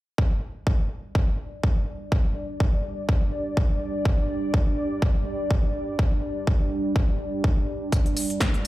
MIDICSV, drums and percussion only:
0, 0, Header, 1, 2, 480
1, 0, Start_track
1, 0, Tempo, 483871
1, 182, Time_signature, 4, 2, 24, 8
1, 8602, End_track
2, 0, Start_track
2, 0, Title_t, "Drums"
2, 181, Note_on_c, 9, 36, 113
2, 280, Note_off_c, 9, 36, 0
2, 661, Note_on_c, 9, 36, 111
2, 761, Note_off_c, 9, 36, 0
2, 1141, Note_on_c, 9, 36, 111
2, 1241, Note_off_c, 9, 36, 0
2, 1622, Note_on_c, 9, 36, 108
2, 1721, Note_off_c, 9, 36, 0
2, 2102, Note_on_c, 9, 36, 120
2, 2201, Note_off_c, 9, 36, 0
2, 2582, Note_on_c, 9, 36, 121
2, 2681, Note_off_c, 9, 36, 0
2, 3062, Note_on_c, 9, 36, 115
2, 3161, Note_off_c, 9, 36, 0
2, 3542, Note_on_c, 9, 36, 116
2, 3641, Note_off_c, 9, 36, 0
2, 4021, Note_on_c, 9, 36, 118
2, 4121, Note_off_c, 9, 36, 0
2, 4501, Note_on_c, 9, 36, 121
2, 4601, Note_off_c, 9, 36, 0
2, 4981, Note_on_c, 9, 36, 121
2, 5081, Note_off_c, 9, 36, 0
2, 5461, Note_on_c, 9, 36, 116
2, 5561, Note_off_c, 9, 36, 0
2, 5941, Note_on_c, 9, 36, 117
2, 6040, Note_off_c, 9, 36, 0
2, 6421, Note_on_c, 9, 36, 123
2, 6520, Note_off_c, 9, 36, 0
2, 6901, Note_on_c, 9, 36, 119
2, 7000, Note_off_c, 9, 36, 0
2, 7381, Note_on_c, 9, 36, 119
2, 7480, Note_off_c, 9, 36, 0
2, 7861, Note_on_c, 9, 36, 116
2, 7861, Note_on_c, 9, 42, 59
2, 7861, Note_on_c, 9, 54, 84
2, 7960, Note_off_c, 9, 36, 0
2, 7960, Note_off_c, 9, 42, 0
2, 7960, Note_off_c, 9, 54, 0
2, 7995, Note_on_c, 9, 42, 33
2, 8094, Note_off_c, 9, 42, 0
2, 8101, Note_on_c, 9, 46, 102
2, 8101, Note_on_c, 9, 54, 67
2, 8200, Note_off_c, 9, 46, 0
2, 8200, Note_off_c, 9, 54, 0
2, 8235, Note_on_c, 9, 42, 48
2, 8334, Note_off_c, 9, 42, 0
2, 8338, Note_on_c, 9, 38, 103
2, 8341, Note_off_c, 9, 38, 0
2, 8341, Note_on_c, 9, 36, 117
2, 8341, Note_on_c, 9, 38, 110
2, 8341, Note_on_c, 9, 42, 58
2, 8341, Note_on_c, 9, 54, 85
2, 8440, Note_off_c, 9, 36, 0
2, 8440, Note_off_c, 9, 38, 0
2, 8440, Note_off_c, 9, 42, 0
2, 8440, Note_off_c, 9, 54, 0
2, 8474, Note_on_c, 9, 42, 32
2, 8573, Note_off_c, 9, 42, 0
2, 8602, End_track
0, 0, End_of_file